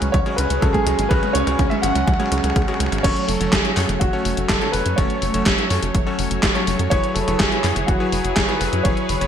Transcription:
Already playing: F#3 G#3 C#4 B4
0.02 C#2 G#3, closed hi-hat, high tom
0.12 C#2 F#3 C#5, kick, closed hi-hat, mid tom
0.26 C#3 G#3 C#4 F#4 G#4 C#5, closed hi-hat
0.36 C#2 C#4 B4, closed hi-hat, mid tom
0.50 C#2 F#4, closed hi-hat
0.60 C#2 C#3 C#4 F#4 G#4 A4 C#5, kick, closed hi-hat, mid tom, high tom
0.73 G#3 G#4, kick, closed hi-hat
0.86 C#2 C#3 F#3 C#4 F#4 G#4 C#5, closed hi-hat, mid tom
0.99 G#1 G#3, closed hi-hat
1.09 C#2 C#3 F#3 C#4 F#4 G#4 B4 C#5, kick, closed hi-hat, mid tom
1.23 G#3, closed hi-hat, mid tom
1.33 C#2 C#4 C#5, closed hi-hat, mid tom
1.47 C#2 C#3 C#4 F#4 G#4 C#5, closed hi-hat, mid tom
1.59 C#2 C#4, kick, closed hi-hat, mid tom
1.70 G#3 E5, closed hi-hat, mid tom
1.82 G#1 C#3 F#3 C#4 F#4 G#4 C#5 F#5, closed hi-hat, mid tom
1.95 C#2 G#3, closed hi-hat, mid tom, high tom
2.07 C#2 F#3, kick, closed hi-hat, mid tom
2.14 mid tom
2.19 C#3 G#3 C#4 F#4 G#4 C#5, closed hi-hat, mid tom
2.26 mid tom
2.32 C#2 G#4, closed hi-hat, mid tom
2.38 mid tom
2.44 C#2 G#4, closed hi-hat, mid tom
2.50 mid tom
2.56 C#2 G#3, kick, closed hi-hat, mid tom
2.62 mid tom
2.68 C#3 C#4 F#4 G#4 C#5, closed hi-hat, mid tom
2.74 mid tom
2.80 C#2 C#4, closed hi-hat, mid tom
2.86 mid tom
2.92 G#1 C#5, closed hi-hat, mid tom
2.98 mid tom
3.03 F#1 F#3 A3 C#4 F#4 A4 C#5, kick, closed hi-hat, crash
3.16 closed hi-hat
3.27 F#1 A4, open hi-hat
3.41 F#1 F#3 C#4 F#4 A4 C#5, closed hi-hat, high tom
3.51 F#1 G#4, kick, snare, clap, closed hi-hat
3.65 closed hi-hat
3.77 F#2 F#3 C#4 F#4 A4 C#5, clap, open hi-hat
3.89 F#1, closed hi-hat, high tom
4.00 F#1 F#4, kick, closed hi-hat
4.13 F#3 C#4 F#4 A4 C#5
4.25 F#1, open hi-hat
4.37 F#1, closed hi-hat
4.48 F#1 A4, kick, snare, clap, closed hi-hat, high tom
4.61 F#3 C#4 F#4 A4 C#5, closed hi-hat
4.72 F#1 B4, open hi-hat
4.86 F#2, closed hi-hat
4.96 F#1 F#3 C#4 F#4 A4 C#5, kick, closed hi-hat
5.10 closed hi-hat
5.22 F#1, open hi-hat
5.34 F#1 F#3 C#4 F#4 A4 C#5, closed hi-hat
5.46 F#1, kick, snare, clap, closed hi-hat
5.58 closed hi-hat
5.70 F#2 F#3 C#4 F#4 A4 C#5, open hi-hat
5.83 F#1, closed hi-hat
5.95 F#1, kick, closed hi-hat
6.07 F#3 C#4 F#4 A4 C#5
6.19 F#1, open hi-hat
6.31 F#1, closed hi-hat
6.43 F#1, kick, snare, clap, closed hi-hat
6.55 F#3 C#4 F#4 A4 C#5, closed hi-hat
6.67 F#1, open hi-hat
6.79 F#2, closed hi-hat
6.90 F#1 F#3 E4 G#4 B4 C#5, kick, closed hi-hat
7.04 closed hi-hat
7.14 F#1 A4, open hi-hat
7.28 F#1 F#3 E4 G#4 B4 C#5, closed hi-hat, high tom
7.38 F#1 G#4, kick, snare, clap, closed hi-hat
7.52 closed hi-hat
7.64 F#2 F#3 E4 G#4 B4 C#5, clap, open hi-hat
7.76 F#1, closed hi-hat, high tom
7.87 F#1 F#4, kick, closed hi-hat
8.00 F#3 E4 G#4 B4 C#5
8.12 F#1, open hi-hat
8.25 F#1, closed hi-hat
8.35 F#1 G#4, kick, snare, clap, closed hi-hat, high tom
8.48 F#3 E4 G#4 B4 C#5, closed hi-hat
8.59 F#1 B4, open hi-hat
8.73 F#2, closed hi-hat
8.83 F#1 F#3 E4 G#4 B4 C#5, kick, closed hi-hat
8.97 closed hi-hat
9.09 F#1, open hi-hat, high tom
9.21 F#1 F#3 E4 G#4 B4 C#5, closed hi-hat

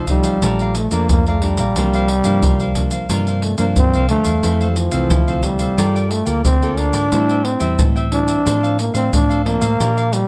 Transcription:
Already playing: C2 C3 A4 C5 F5
0.07 F3 G3 A3 D#4, pandeiro, maracas, surdo
0.23 A4 C5 F5, pandeiro, maracas
0.42 A#1 A#2 F3 A3 D4 A4 D5 F5 A#5, pandeiro, maracas, surdo
0.59 D5 F5 A#5, pandeiro, maracas
0.75 A3, muted cavaquinho stroke, pandeiro, maracas
0.91 F2 F3 A3 A#3 D4 D5 F5 A#5, pandeiro, maracas
1.09 F2 A#3, pandeiro, maracas, surdo
1.27 A3 D5 F5 A#5, pandeiro, maracas
1.42 F3 G3 A3 D4 A4 D5 F5 A#5, pandeiro
1.57 A#1 D5 F5 A#5, pandeiro, maracas
1.76 C2 C3 F3 A#3 D4 F4 A#4 C5 F5, pandeiro, maracas, surdo
1.93 A#4 C5 F5, pandeiro, maracas
2.08 muted cavaquinho stroke, pandeiro
2.24 G2 F3 A#3 D4 A#4 C5 F5, pandeiro, maracas
2.42 C2 G2 F4 A#4 C5 F5, pandeiro, maracas, surdo
2.60 A#4 C5 F5, pandeiro, maracas
2.75 F3 A#3 D4, pandeiro, maracas, surdo
2.91 A#4 C5 F5, pandeiro, maracas
3.09 G2 C3 F3 A#3 D4 F4 A#4 C5 F5, pandeiro, maracas, surdo
3.27 A#4 C5 F5, pandeiro, maracas
3.42 A3, muted cavaquinho stroke, pandeiro
3.58 G2 F3 A#3 D4 A#4 C5 F5, pandeiro, maracas
3.76 G2 C4, pandeiro, maracas, surdo
3.93 C2 A#4 C5 F5, pandeiro, maracas
4.09 D2 F3 A3 A#3 D4 F4 A#4 C5 F5, pandeiro
4.24 E2 A#4 C5 F5, pandeiro, maracas
4.43 F2 E3 A3 C4 E4 A4 C5 F5, pandeiro, maracas, surdo
4.60 A4 C5 F5, pandeiro, maracas
4.70 G3
4.76 F3, muted cavaquinho stroke, pandeiro, maracas
4.91 C2 E3 A3 C4 A4 C5 F5, pandeiro, maracas
5.10 D2 C3 E4 A4 C5 F5, pandeiro, maracas, surdo
5.27 E3 A3 C4 A4 C5 F5, pandeiro, maracas
5.43 G3, pandeiro, maracas, surdo
5.59 A4 C5 F5, pandeiro, maracas
5.77 G2 G3 A#3 F4 A4 A#4 D5 G5, pandeiro, maracas, surdo
5.95 A#4 D5 G5, pandeiro, maracas
6.10 A3, muted cavaquinho stroke, pandeiro
6.25 D2 A#3 F4 A4 A#4 D5 G5, pandeiro, maracas
6.45 D2 D3 C4, pandeiro, maracas, surdo
6.62 A#3 F4 A4 A#4 D5 G5, pandeiro, maracas
6.77 D4 F4 A#4 D5 G5, pandeiro
6.93 G#2 A#4 D5 G5, pandeiro, maracas
7.12 A2 G3 C4 E4 A4 C5 E5 G5, pandeiro, maracas, surdo
7.29 C5 E5 G5, pandeiro, maracas
7.44 C4, muted cavaquinho stroke, pandeiro
7.60 E2 G3 C4 E4 C5 E5 G5, pandeiro, maracas
7.79 A2 E3 A4 C5 E5 G5, pandeiro, maracas, surdo
7.96 C5 E5 G5, pandeiro, maracas
8.12 G3 C4 D4 E4, pandeiro
8.27 C5 E5 G5, pandeiro, maracas
8.45 A2 F3 C4 D4 A4 C5 F5, pandeiro, maracas, surdo
8.63 A4 C5 F5, pandeiro, maracas
8.79 A#3, muted cavaquinho stroke, pandeiro, maracas
8.94 A2 F3 C4 D4 A4 C5 F5, pandeiro, maracas
9.13 A2 D4, pandeiro, maracas, surdo
9.29 A4 C5 F5, pandeiro, maracas
9.45 F3 A#3 C4 D4 A4 C5 F5, pandeiro
9.61 A2 A4 C5 F5, pandeiro, maracas
9.80 A#2 F3 D4 G4 A#4 D5 F5, pandeiro, maracas, surdo
9.97 A#4 D5 F5, pandeiro, maracas
10.12 G3, muted cavaquinho stroke, pandeiro, maracas

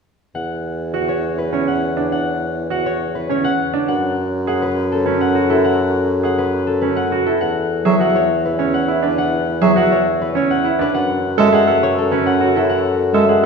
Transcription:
0.35 E2 F#5
0.94 F#4 F#5
1.08 C#5
1.38 B4
1.53 C#4 C#5
1.68 F#5
1.97 D4
2.12 F#5
2.70 F#4 F#5
2.86 C#5
3.15 B4
3.29 C#4 C#5
3.44 F#5
3.74 D4
3.88 F#2 F#5
4.47 G#4 F#5
4.62 B4
4.92 A4
5.06 C#4 B4
5.21 F#5
5.35 F#4
5.50 E4 A4
5.64 F#5
6.23 G#4 F#5
6.38 B4
6.67 A4
6.81 C#4 B4
6.96 F#5
7.12 F#4
7.26 E4 A4
7.41 E2 F#5
7.85 F#3 G#4 E5
8.00 F#4 F#5
8.15 C#5
8.45 B4
8.59 C#4 C#5
8.74 F#5
8.88 E4
9.03 D4 B4
9.18 F#5
9.62 F#3 G#4 E5
9.76 F#4 F#5
9.92 C#5
10.22 B4
10.35 C#4 C#5
10.51 F#5
10.64 E4
10.79 D4 B4
10.94 F#2 F#5
11.38 G#3 A4 E5
11.53 G#4 F#5
11.67 A4 B4
11.83 C#5
11.98 A4
12.12 C#4 B4
12.26 F#5
12.41 F#4
12.55 E4 A4
12.69 F#5
13.14 G#3 A4 E5
13.29 G#4 F#5

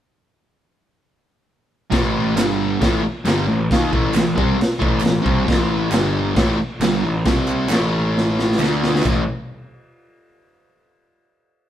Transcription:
1.91 A1 A2 E3 A3, kick, snare, crash
2.35 G1 G2 D3 G3, snare, clap, crash
2.81 A1 A2 E3 A3, kick, snare, crash
3.04 muted distorted electric guitar stroke, muted picked electric bass stroke
3.25 G1 G2 D3 G3, snare, clap, crash
3.47 A1 A2 E3
3.71 D#2 D#3 A#3 D#4, kick, snare, crash
3.92 A1 A2 E3 A3, kick
4.13 A1 A2 E3, snare, clap, crash
4.36 C2 C3 G3 C4, kick
4.57 muted picked electric bass stroke, muted distorted electric guitar stroke, crash
4.62 snare
4.79 A1 A2 E3 A3, kick
5.01 A1 A2 E3, clap
5.05 snare, crash
5.22 C2 C3 G3 C4, kick
5.46 A1 A2 E3 A3, kick, crash
5.51 snare
5.91 G1 G2 D3 G3, snare, clap, crash
6.35 A1 A2 E3 A3, kick, snare, crash
6.58 muted distorted electric guitar stroke, muted picked electric bass stroke
6.80 G1 G2 D3 G3, snare, clap, crash
7.02 A1 A2 E3
7.25 C2 C3 G3 C4, kick, snare, crash
7.48 clap
7.69 A1 A2 E3 A3, snare, clap, crash
8.17 snare
8.39 snare
8.52 snare
8.59 D2 D3 A3 D4, clap
8.63 snare
8.84 snare
8.95 snare
9.03 A1 A2 E3 A3, kick, clap, crash

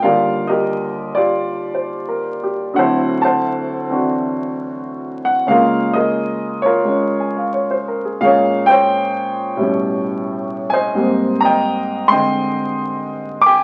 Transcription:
0.02 D#2 D3 G3 F4 A#4 D5 F5
0.47 G4 A#4 D#5
1.15 F4 G4 D5
1.75 C5
2.08 A#4
2.43 G4
2.74 D2 D3 F#3 A3 C4 F#5
2.78 E4 A4 C5
3.22 C5 F#5 A5
3.89 E3 C4 D4 F#4
5.25 F#5
5.47 C#3 G#3 A#3 G#4 F5
5.51 F4 A#4
5.93 G#4 A#4 D#5
6.62 F4 A#4 C#5
6.85 G#3 C#4
7.20 G#5
7.37 F5
7.54 C#5
7.71 C5
7.88 A#4
8.05 G#4
8.21 A#2 G#3 A#3 G#4 F5
8.25 C#4 C#5
8.66 C5 C#5 G5
9.57 A2 B2 G3
9.62 C#4
10.70 C5 D#5 G#5
10.95 G#2 G3 A#3 C4
11.41 A#5
11.45 D#5 G5
12.08 D3 G#3 C4 D#5 G5 C6
13.41 D6
13.46 G5 G#5

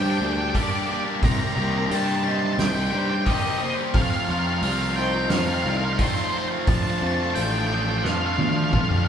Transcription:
Already playing: G2 G3 A#3 D4 G4 A4 C5 A5
0.02 A#3 D4 G4 G5
0.10 G5
0.18 D2 G3 D4 G5
0.22 A#3 D4 G4 D5
0.26 G5
0.33 G4 G5
0.38 A#3 D4 G5, muted distorted electric guitar stroke
0.50 G5
0.54 G3 A#3 D4 G4 A4 D5, kick, open hi-hat
0.63 D5
0.70 A#3 D4 G4 D5
0.79 D5
0.87 G3 A#3 D4 G4 D5
0.95 D5
1.04 A#3 D4 G4
1.21 C2 C3 D#3 G3 C4 D#4 G4 A#5 C6, kick, open hi-hat
1.32 A#5
1.39 A#5
1.47 A#5
1.55 C2 D#3 G3 A#3 C4 G4 A#4 A#5
1.62 A#5
1.71 C4 G4 A#5
1.76 G3 A#5
1.86 C3 A#5
1.90 G2 D#3 G3 C4 G4 D5 A5, open hi-hat
2.00 A5
2.07 A5
2.15 A5
2.23 D#3 G3 C4 G4 D#5 A5
2.31 A5
2.39 C4 G4 A5, muted distorted electric guitar stroke
2.44 G3 A5
2.53 A5
2.58 C2 D#3 G5, snare, open hi-hat
2.68 G5
2.75 G3 C4 G4 G5
2.84 G5
2.91 G2 D#3 G3 C4 D5 G5
2.95 G4 G5
3.06 G4 G5
3.11 G3 C4 G5, muted distorted electric guitar stroke
3.22 C3 D#5 G5
3.26 D#3 G3 C4 G4 D6, kick, open hi-hat
3.34 D#5
3.42 G3 C4 G4 D#5, snare
3.50 D#5
3.58 D#3 G3 A#3 C4 C5 D#5
3.62 G4 D#5
3.76 G3 C4 G4
3.93 F2 F3 A3 C4 F4 F5 A#5, kick, open hi-hat
4.02 F5
4.10 F5
4.17 F5
4.25 F2 F3 F5
4.29 A3 C4 F4 F5 A#5
4.39 F5
4.44 A3 C4 F4 F5
4.54 F5
4.61 C2 F3 A3 C4 F4 D5 F5, open hi-hat
4.96 F3 A3 C4 D#4 F4 C5 G5
5.13 A3 C4 F4, muted distorted electric guitar stroke
5.29 F2 D#3 F5, snare, open hi-hat
5.37 F5
5.46 C4 F4 F5
5.51 A3 F5
5.62 C2 F3 D#4 F5
5.66 A3 C4 F4 D5 F5
5.77 F5
5.82 A3 C4 F4 F5, muted distorted electric guitar stroke
5.93 F5
5.98 F3 A3 C4 F4 C5 D5, kick, open hi-hat
6.07 C5
6.14 C4 F4 C5, snare
6.18 A3 C5
6.30 F3 A3 C4 C5
6.35 F4 C5
6.49 A3 C4 F4
6.66 F2 F3 A3 D4 F4 A4 A5, kick, open hi-hat
6.75 A5
6.83 A5
6.90 A5
6.99 F2 F3 A3 C5 A5
7.03 D4 F4 A5
7.14 F4 A5
7.19 A3 D4 A5
7.31 F3 A5
7.35 A1 A3 D4 F4 D5 G5, open hi-hat
7.42 G5
7.51 G5
7.58 G5
7.67 F3 A3 D4 G5 D#6
7.71 F4 G5
7.82 F4 G5
7.87 A3 D4 G5, muted distorted electric guitar stroke
7.98 G5
8.03 F2 F3 F5, snare
8.12 F5
8.18 D4 F4 F5
8.23 A3 F5
8.33 F5
8.38 D2 F3 A3 D4 F4 D5 F5, high tom
8.49 F5
8.54 A3 D4 F4 F5, muted distorted electric guitar stroke
8.64 F5
8.72 F2 F3 A3 D4 F4 D5 F5, kick, mid tom
8.81 F5
8.89 A3 D4 F4 F5, mid tom
8.98 F5
9.05 F5

